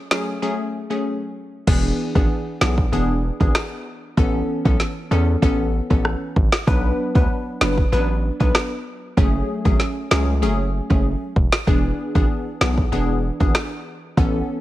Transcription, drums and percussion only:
0.11 snare
1.67 kick, crash
2.15 kick
2.61 snare
2.78 kick
3.41 kick
3.55 cross-stick, snare
4.17 kick
4.65 kick
4.80 snare
5.42 kick
5.91 kick
6.05 cross-stick
6.36 kick
6.52 snare
6.67 kick
7.15 kick
7.61 snare
7.78 kick
8.40 kick
8.55 cross-stick, snare
9.17 kick
9.65 kick
9.80 snare
10.11 snare
10.90 kick
11.36 kick
11.52 snare
11.67 kick
12.15 kick
12.61 snare
12.78 kick
13.40 kick
13.55 cross-stick, snare
14.17 kick

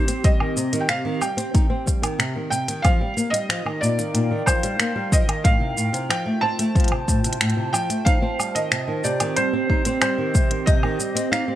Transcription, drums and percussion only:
0.08 closed hi-hat, shaker
0.24 kick, closed hi-hat, shaker
0.40 low woodblock
0.57 shaker
0.73 closed hi-hat, shaker
0.89 finger snap, closed hi-hat, shaker
1.22 low woodblock, shaker
1.38 closed hi-hat, shaker
1.55 kick, closed hi-hat, shaker
1.87 kick, shaker
2.03 closed hi-hat, low woodblock, shaker
2.20 finger snap, closed hi-hat, shaker
2.52 shaker
2.68 closed hi-hat, shaker
2.85 kick, closed hi-hat, low woodblock, shaker
3.18 shaker
3.34 closed hi-hat, shaker
3.50 finger snap, closed hi-hat, shaker
3.66 low woodblock
3.83 shaker
3.99 closed hi-hat, shaker
4.15 closed hi-hat, shaker
4.47 kick, low woodblock, shaker
4.63 closed hi-hat, shaker
4.80 finger snap, closed hi-hat, shaker
5.12 kick, shaker
5.29 closed hi-hat, low woodblock
5.45 kick, closed hi-hat, shaker
5.78 shaker
5.94 closed hi-hat, shaker
6.11 finger snap, closed hi-hat, low woodblock, shaker
6.59 closed hi-hat, shaker
6.75 kick, closed hi-hat, shaker
6.80 closed hi-hat
6.84 closed hi-hat
6.88 closed hi-hat, low woodblock
7.08 kick, shaker
7.24 closed hi-hat, shaker
7.33 closed hi-hat
7.41 finger snap, closed hi-hat, shaker
7.50 closed hi-hat
7.74 low woodblock, shaker
7.90 closed hi-hat, shaker
8.06 kick, closed hi-hat, shaker
8.40 low woodblock, shaker
8.56 closed hi-hat, shaker
8.72 finger snap, closed hi-hat, shaker
9.04 shaker
9.20 closed hi-hat, low woodblock, shaker
9.37 closed hi-hat, shaker
9.70 kick
9.85 closed hi-hat, shaker
10.02 finger snap, closed hi-hat, low woodblock, shaker
10.35 kick, shaker
10.51 closed hi-hat
10.67 kick, closed hi-hat, shaker
10.83 low woodblock
11.00 shaker
11.17 closed hi-hat, shaker
11.33 finger snap, closed hi-hat, shaker

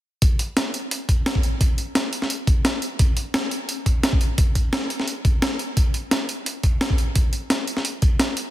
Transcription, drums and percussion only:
0.22 kick, closed hi-hat
0.39 closed hi-hat
0.57 snare, closed hi-hat
0.74 closed hi-hat
0.91 closed hi-hat
1.09 kick, closed hi-hat
1.26 snare, closed hi-hat
1.35 kick
1.43 closed hi-hat
1.61 kick, closed hi-hat
1.78 closed hi-hat
1.95 snare, closed hi-hat
2.13 closed hi-hat
2.22 snare
2.30 closed hi-hat
2.47 kick, closed hi-hat
2.65 snare, closed hi-hat
2.82 closed hi-hat
2.99 kick, closed hi-hat
3.17 closed hi-hat
3.34 snare, closed hi-hat
3.51 closed hi-hat
3.69 closed hi-hat
3.86 kick, closed hi-hat
4.03 snare, closed hi-hat
4.13 kick
4.21 closed hi-hat
4.38 kick, closed hi-hat
4.55 kick, closed hi-hat
4.73 snare, closed hi-hat
4.90 closed hi-hat
5.00 snare
5.08 closed hi-hat
5.25 kick, closed hi-hat
5.42 snare, closed hi-hat
5.59 closed hi-hat
5.77 kick, closed hi-hat
5.94 closed hi-hat
6.11 snare, closed hi-hat
6.29 closed hi-hat
6.46 closed hi-hat
6.63 kick, closed hi-hat
6.81 snare, closed hi-hat
6.90 kick
6.98 closed hi-hat
7.15 kick, closed hi-hat
7.33 closed hi-hat
7.50 snare, closed hi-hat
7.68 closed hi-hat
7.77 snare
7.85 closed hi-hat
8.02 kick, closed hi-hat
8.19 snare, closed hi-hat
8.37 closed hi-hat

